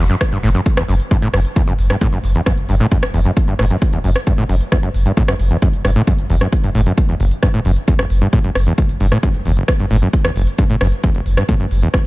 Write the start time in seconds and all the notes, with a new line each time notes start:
0.10 F#2, closed hi-hat
0.21 kick, cross-stick, closed hi-hat
0.32 F#1 G2, closed hi-hat
0.43 F#1 A2, open hi-hat
0.55 F#2, closed hi-hat
0.66 kick, closed hi-hat
0.77 F#1 E2, cross-stick, closed hi-hat
0.88 F#1 F#2, open hi-hat
1.00 closed hi-hat
1.11 G2, kick, closed hi-hat
1.22 F#1 A2, closed hi-hat
1.34 F#1 F#2, cross-stick, open hi-hat
1.45 closed hi-hat
1.56 E2, kick, closed hi-hat
1.67 F#1 F#2, closed hi-hat
1.79 F#1, open hi-hat
1.90 G2, cross-stick, closed hi-hat
2.01 A2, kick, closed hi-hat
2.13 F#1 F#2, closed hi-hat
2.24 F#1, open hi-hat
2.35 E2, closed hi-hat
2.46 F#2, kick, cross-stick, closed hi-hat
2.58 F#1, closed hi-hat
2.69 F#1 G2, open hi-hat
2.80 A2, closed hi-hat
2.91 F#2, kick, closed hi-hat
3.03 F#1, cross-stick, closed hi-hat
3.14 F#1 E2, open hi-hat
3.25 F#2, closed hi-hat
3.37 kick, closed hi-hat
3.48 F#1 G2, closed hi-hat
3.59 F#1 A2, cross-stick, open hi-hat
3.70 F#2, closed hi-hat
3.82 kick, closed hi-hat
3.93 F#1 E2, closed hi-hat
4.04 F#1 F#2, open hi-hat
4.16 cross-stick, closed hi-hat
4.27 G2, kick, closed hi-hat
4.38 F#1 A2, closed hi-hat
4.49 F#1 F#2, open hi-hat
4.61 closed hi-hat
4.72 E2, kick, cross-stick, closed hi-hat
4.83 F#1 F#2, closed hi-hat
4.94 F#1, open hi-hat
5.06 G2, closed hi-hat
5.17 A2, kick, closed hi-hat
5.28 F#1 F#2, cross-stick, closed hi-hat
5.40 F#1, open hi-hat
5.51 E2, closed hi-hat
5.62 F#2, kick, closed hi-hat
5.73 F#1, closed hi-hat
5.85 F#1 G2, cross-stick, open hi-hat
5.96 A2, closed hi-hat
6.07 F#2, kick, closed hi-hat
6.19 F#1, closed hi-hat
6.30 F#1 E2, open hi-hat
6.41 F#2, cross-stick, closed hi-hat
6.52 kick, closed hi-hat
6.64 F#1 G2, closed hi-hat
6.75 F#1 A2, open hi-hat
6.86 F#2, closed hi-hat
6.98 kick, closed hi-hat
7.09 F#1 E2, closed hi-hat
7.20 F#1, open hi-hat
7.31 closed hi-hat
7.43 G2, kick, cross-stick, closed hi-hat
7.54 F#1 A2, closed hi-hat
7.65 F#1 F#2, open hi-hat
7.76 closed hi-hat
7.88 E2, kick, closed hi-hat
7.99 F#1, cross-stick, closed hi-hat
8.10 F#1, open hi-hat
8.22 G2, closed hi-hat
8.33 A2, kick, closed hi-hat
8.44 F#1 F#2, closed hi-hat
8.55 F#1, cross-stick, open hi-hat
8.67 E2, closed hi-hat
8.78 F#1, kick, closed hi-hat
8.89 F#1, closed hi-hat
9.00 F#1 G2, open hi-hat
9.12 A2, cross-stick
9.23 F#2, kick, closed hi-hat
9.34 F#1, closed hi-hat
9.46 F#1 E2, open hi-hat
9.57 F#1, closed hi-hat
9.68 kick, cross-stick, closed hi-hat
9.79 F#1 G2, closed hi-hat
9.91 F#1 A2, open hi-hat
10.02 F#2, closed hi-hat
10.13 kick, closed hi-hat
10.25 F#1 E2, cross-stick, closed hi-hat
10.36 F#1, open hi-hat
10.47 closed hi-hat
10.58 G2, kick, closed hi-hat
10.70 F#1 A2, closed hi-hat
10.81 F#1 F#2, cross-stick, open hi-hat
10.92 closed hi-hat
11.03 E2, kick, closed hi-hat
11.15 F#1, closed hi-hat
11.26 F#1, open hi-hat
11.37 G2, cross-stick
11.49 A2, kick, closed hi-hat
11.60 F#1 F#2, closed hi-hat
11.71 F#1, open hi-hat
11.82 E2, closed hi-hat
11.94 F#1, kick, cross-stick, closed hi-hat